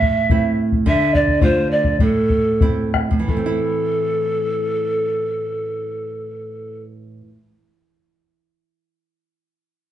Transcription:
0.00 0.83 A2 medium
0.00 0.55 E5 loud
0.00 bombo low medium
0.30 0.85 A3 medium
0.30 0.85 C4 medium
0.30 0.85 E4 medium
0.30 bombo low medium
0.72 bombo low medium
0.86 1.96 D3 medium
0.86 1.16 E5 loud
0.86 bombo low medium
1.14 1.44 D5 loud
1.14 bombo low medium
1.28 bombo low soft
1.41 1.98 A3 medium
1.41 1.98 D4 soft
1.41 1.98 F4 medium
1.41 1.72 C5 loud
1.41 bombo low medium
1.71 2.00 D5 loud
1.84 bombo low medium
1.99 3.09 A2 medium
1.99 2.90 A4 loud
1.99 bombo low medium
2.30 bombo low medium
2.61 3.25 A3 medium
2.61 3.26 C4 soft
2.61 3.26 E4 medium
2.61 bombo low medium
2.94 bombo rim soft
2.94 bombo low soft
3.11 7.20 A2 medium
3.11 bombo low medium
3.19 7.29 E3 medium
3.28 7.38 A3 medium
3.28 6.80 A4 loud
3.28 bombo low medium
3.37 7.46 C4 medium
3.46 7.56 E4 medium

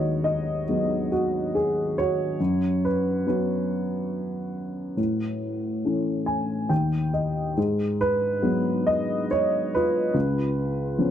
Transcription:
0.00 2.36 D#2 soft
0.00 0.64 F#3 soft
0.00 0.64 G#3 soft
0.00 0.64 B3 soft
0.00 1.08 F#4 soft
0.00 2.42 B4 medium
0.00 1.98 C#5 medium
0.00 0.24 D#5 medium
0.24 1.13 D#5 medium
0.68 2.36 F#3 soft
0.68 2.36 G#3 soft
0.68 2.36 B3 soft
1.12 1.56 F#4 medium
1.55 1.98 G#4 medium
1.98 3.24 F#4 medium
1.98 2.86 C#5 medium
2.40 4.94 F#2 medium
2.85 3.26 B4 medium
3.26 4.94 F#3 soft
3.26 4.94 B3 soft
3.26 4.95 C#4 soft
3.26 6.69 F#4 soft
3.26 6.68 B4 medium
4.97 6.66 A2 soft
5.85 6.68 E3 soft
5.85 6.69 A3 soft
5.85 6.69 C#4 soft
6.26 6.67 G#5 medium
6.69 7.54 D#2 soft
6.69 7.10 G5 soft
7.14 7.54 D#5 soft
7.57 10.11 G#2 medium
8.01 8.89 B4 medium
8.42 9.26 F#3 soft
8.42 9.26 G#3 soft
8.42 9.26 B3 soft
8.87 9.31 D#5 medium
9.31 9.74 C#5 medium
9.75 11.11 F4 soft
9.75 11.11 B4 medium
10.14 11.11 C#2 medium
10.98 11.11 F3 soft
10.98 11.11 B3 soft
10.98 11.11 C#4 soft

